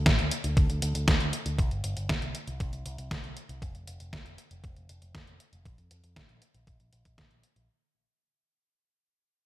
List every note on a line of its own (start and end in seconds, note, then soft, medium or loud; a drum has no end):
0.06 0.16 A1 medium
0.06 kick loud
0.06 snare loud
0.06 closed hi-hat soft
0.19 0.29 D2 medium
0.19 closed hi-hat soft
0.31 closed hi-hat medium
0.44 0.55 D2 medium
0.44 closed hi-hat soft
0.57 0.67 D2 medium
0.57 kick loud
0.57 closed hi-hat soft
0.70 0.80 D2 medium
0.70 closed hi-hat soft
0.82 0.93 D2 medium
0.82 closed hi-hat medium
0.95 1.05 D2 medium
0.95 closed hi-hat soft
1.08 kick loud
1.08 snare loud
1.08 closed hi-hat soft
1.20 1.31 D2 medium
1.20 closed hi-hat soft
1.33 closed hi-hat medium
1.46 1.56 D2 medium
1.46 closed hi-hat soft
1.59 1.69 C2 loud
1.59 kick loud
1.59 closed hi-hat soft
1.71 1.82 G1 medium
1.71 closed hi-hat soft
1.84 1.94 G1 medium
1.84 closed hi-hat medium
1.97 2.07 G1 medium
1.97 closed hi-hat soft
2.09 2.20 C2 medium
2.09 kick loud
2.09 snare loud
2.09 closed hi-hat soft
2.22 2.33 C2 medium
2.22 closed hi-hat soft
2.35 closed hi-hat medium
2.47 2.58 C2 medium
2.47 closed hi-hat soft
2.60 2.71 C2 medium
2.60 kick loud
2.60 closed hi-hat soft
2.73 2.83 C2 medium
2.73 closed hi-hat soft
2.86 2.96 C2 medium
2.86 closed hi-hat medium
2.98 3.09 C2 medium
2.98 closed hi-hat soft
3.11 kick loud
3.11 snare loud
3.11 closed hi-hat soft
3.24 3.34 C2 medium
3.24 closed hi-hat soft
3.37 closed hi-hat medium
3.49 3.60 C2 medium
3.49 closed hi-hat soft
3.62 3.72 F1 loud
3.62 kick loud
3.62 closed hi-hat soft
3.75 3.85 F1 medium
3.75 closed hi-hat soft
3.87 3.98 F1 medium
3.87 closed hi-hat medium
4.00 4.11 F1 medium
4.00 closed hi-hat soft
4.13 4.23 C2 medium
4.13 kick loud
4.13 snare loud
4.13 closed hi-hat soft
4.26 4.36 F1 medium
4.26 closed hi-hat soft
4.38 closed hi-hat medium
4.51 4.61 F1 medium
4.51 closed hi-hat soft
4.64 4.74 F1 medium
4.64 kick loud
4.64 closed hi-hat soft
4.76 4.87 F1 medium
4.76 closed hi-hat soft
4.89 5.00 F1 medium
4.89 closed hi-hat medium
5.02 5.12 F1 medium
5.02 closed hi-hat soft
5.15 5.25 F1 medium
5.15 kick loud
5.15 snare loud
5.15 closed hi-hat soft
5.27 5.38 F1 medium
5.27 closed hi-hat soft
5.40 closed hi-hat medium
5.53 5.63 F1 medium
5.53 closed hi-hat soft
5.65 5.76 A#1 medium
5.65 kick loud
5.65 closed hi-hat medium
5.78 5.89 F2 medium
5.78 closed hi-hat soft
5.91 6.01 F2 medium
5.91 closed hi-hat medium
6.04 6.14 F2 medium
6.04 closed hi-hat soft
6.16 kick loud
6.16 snare loud
6.16 closed hi-hat soft
6.29 6.39 A#1 medium
6.29 closed hi-hat soft
6.42 closed hi-hat medium
6.54 6.65 A#1 medium
6.54 closed hi-hat medium
6.67 6.78 A#1 medium
6.67 kick loud
6.67 closed hi-hat medium
6.80 6.90 A#1 medium
6.80 closed hi-hat soft
6.93 7.03 A#1 medium
6.93 closed hi-hat medium
7.05 7.16 A#1 medium
7.05 kick medium
7.05 closed hi-hat soft
7.18 kick loud
7.18 snare loud
7.18 closed hi-hat soft
7.31 7.41 A#1 medium
7.31 closed hi-hat soft
7.43 closed hi-hat medium
7.56 7.66 A#1 medium
7.56 closed hi-hat medium